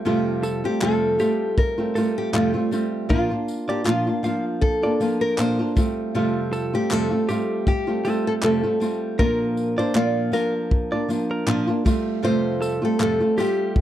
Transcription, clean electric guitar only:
0.43 0.63 A4 medium
1.20 1.56 G4 medium
1.95 2.51 A4 medium
3.10 3.30 A#4 medium
3.69 3.85 D5 medium
3.86 4.22 F5 medium
4.24 4.44 F5 medium
4.83 5.00 D5 medium
5.21 5.38 A#4 medium
6.53 6.73 A4 medium
7.29 7.65 G4 medium
8.05 8.60 A4 medium
9.19 9.39 A#4 medium
9.78 9.94 D5 medium
9.96 10.32 F5 medium
10.33 10.53 F5 medium
10.92 11.09 D5 medium
11.31 11.47 A#4 medium
12.62 12.82 A4 medium
13.38 13.74 G4 medium

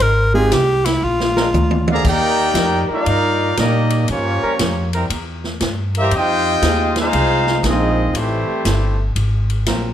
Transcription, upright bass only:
0.00 0.50 G#1 loud
0.52 1.01 C2 loud
1.02 1.52 A#1 loud
1.53 2.03 D2 loud
2.05 2.53 D#2 loud
2.54 2.87 F2 loud
2.89 muted upright bass stroke soft
3.06 3.56 G2 medium
3.57 4.07 A#2 loud
4.09 4.41 G2 loud
4.43 muted upright bass stroke soft
4.59 5.09 F2 loud
5.10 5.60 E2 medium
5.60 6.10 G2 loud
6.11 6.61 F2 medium
6.62 7.12 D#2 medium
7.13 7.62 C2 loud
7.63 8.13 A#1 loud
8.14 8.46 A1 medium
8.49 muted upright bass stroke soft
8.65 9.15 G1 loud
9.16 9.65 G#1 medium
9.67 9.94 A#1 medium

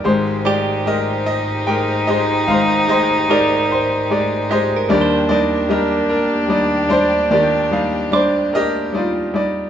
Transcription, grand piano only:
0.04 2.45 G#1 medium
0.04 2.45 G#2 medium
0.04 0.37 G#3 medium
0.04 0.38 G4 medium
0.04 0.47 C5 medium
0.44 0.71 G#3 medium
0.44 0.71 G4 soft
0.44 0.83 D5 medium
0.85 1.37 G#3 soft
0.85 1.38 G4 soft
0.85 1.38 A#4 medium
0.85 1.25 D#5 medium
1.26 1.69 D#5 medium
1.66 1.93 G#3 medium
1.66 1.94 G4 soft
1.66 1.94 A#4 medium
1.66 2.09 G5 medium
2.07 2.59 G#3 medium
2.07 2.60 G4 soft
2.07 2.49 C5 medium
2.07 2.50 D#5 medium
2.48 4.86 G#1 medium
2.48 4.86 G#2 medium
2.48 2.88 C5 medium
2.48 2.86 F5 medium
2.88 3.14 G#3 medium
2.88 3.15 G4 soft
2.88 3.15 C5 medium
2.88 3.31 D#5 medium
3.28 3.80 G#3 medium
3.28 3.81 D#4 medium
3.28 3.81 G4 medium
3.28 3.72 D5 medium
3.71 4.47 C5 medium
4.10 4.35 G#3 medium
4.10 4.36 G4 medium
4.10 4.36 D5 medium
4.49 4.90 G#3 medium
4.49 4.90 G4 medium
4.49 4.91 C5 medium
4.49 4.92 D#5 medium
4.89 7.27 D#2 medium
4.89 7.27 D#3 medium
4.89 5.21 G3 medium
4.89 5.22 D4 medium
4.89 5.68 G4 medium
4.89 5.27 D5 medium
5.29 5.55 G3 medium
5.29 5.56 D#4 medium
5.29 5.71 D5 medium
5.69 6.21 G3 medium
5.69 6.21 G4 medium
5.69 6.08 A#4 medium
5.69 6.12 D#5 medium
6.09 6.93 A#4 medium
6.48 6.75 G3 medium
6.48 6.76 D#4 medium
6.48 6.76 D5 medium
6.89 7.41 G3 medium
6.89 7.42 D4 medium
6.89 7.32 C5 medium
6.89 7.30 D5 medium
7.31 9.70 D#2 medium
7.31 9.70 D#3 medium
7.31 8.50 G4 medium
7.31 8.11 D5 medium
7.71 7.97 G3 medium
7.71 7.98 D#4 soft
7.71 7.98 F5 medium
8.11 8.63 G3 medium
8.11 8.64 D4 medium
8.11 8.55 C5 medium
8.11 8.64 D5 medium
8.53 8.93 G4 medium
8.53 9.41 A#4 medium
8.53 8.96 D#5 medium
8.93 9.19 G3 medium
8.93 9.20 D#4 soft
8.93 9.20 D5 medium
8.97 9.70 F4 medium
9.34 9.70 G3 medium
9.34 9.70 D#4 medium
9.34 9.70 D5 medium

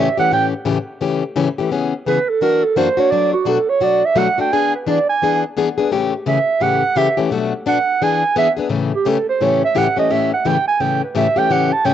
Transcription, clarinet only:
0.00 0.19 E5 medium
0.20 0.31 F#5 medium
0.33 0.46 G5 medium
2.08 2.31 B4 medium
2.30 2.44 A4 medium
2.43 2.66 A#4 medium
2.65 2.79 A4 medium
2.77 3.01 C5 medium
3.00 3.13 C#5 medium
3.11 3.33 D5 loud
3.34 3.50 F#4 medium
3.49 3.71 A4 medium
3.70 3.86 C#5 medium
3.84 4.08 D5 medium
4.06 4.20 E5 medium
4.18 4.39 F#5 medium
4.42 4.55 G5 medium
4.53 4.74 G#5 loud
4.76 4.90 B4 soft
4.89 5.09 D5 medium
5.10 5.41 G#5 loud
6.28 6.64 E5 medium
6.62 6.99 F#5 loud
6.97 7.18 E5 medium
7.68 8.05 F#5 medium
8.03 8.37 G#5 loud
8.38 8.50 E5 medium
8.95 9.11 G4 medium
9.09 9.29 A4 medium
9.29 9.44 C5 medium
9.43 9.63 C#5 medium
9.65 9.79 E5 medium
9.78 9.98 F#5 medium
9.99 10.14 D#5 loud
10.12 10.33 E5 medium
10.34 10.48 F#5 medium
10.47 10.68 G5 medium
10.68 10.83 G#5 loud
10.81 11.03 G5 medium
11.04 11.18 B4 medium
11.17 11.40 E5 loud
11.38 11.54 G5 loud
11.52 11.74 F#5 medium
11.73 11.87 A5 loud
11.86 11.94 G5 medium

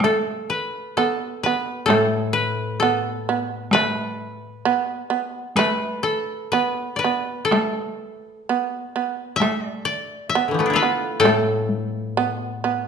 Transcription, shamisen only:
0.04 0.97 A3 medium
0.98 1.45 B3 medium
1.46 1.90 B3 medium
1.90 2.82 A3 medium
2.82 3.28 B3 medium
3.29 3.74 B3 medium
3.75 4.65 A3 medium
4.65 5.09 B3 medium
5.10 5.58 B3 medium
5.59 6.53 A3 medium
6.53 7.03 B3 medium
7.04 7.52 B3 medium
7.52 8.49 A3 medium
8.49 8.94 B3 medium
8.96 9.41 B3 medium
9.42 10.34 A3 medium
10.35 10.80 B3 medium
10.83 11.25 B3 medium
11.25 12.16 A3 medium
12.17 12.63 B3 medium
12.64 12.88 B3 medium

